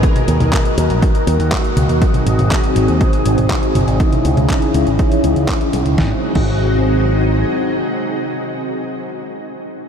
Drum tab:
CC |----------------|----------------|----------------|---x------------|
HH |xxxxxxxxxxxxxxxx|xxxxxxxxxxxxxxxx|xxxxxxxxxxxxxxxx|----------------|
CP |----x-------x---|----x-------x---|----x-------x---|----------------|
SD |----------------|----------------|----------------|o---------------|
CG |-o-o----------o-|-o-o-------o--o-|-o-o----------o-|----------------|
BD |o---o---o---o---|o---o---o---o---|o---o---o---o---|o--o------------|

CC |----------------|
HH |----------------|
CP |----------------|
SD |----------------|
CG |----------------|
BD |----------------|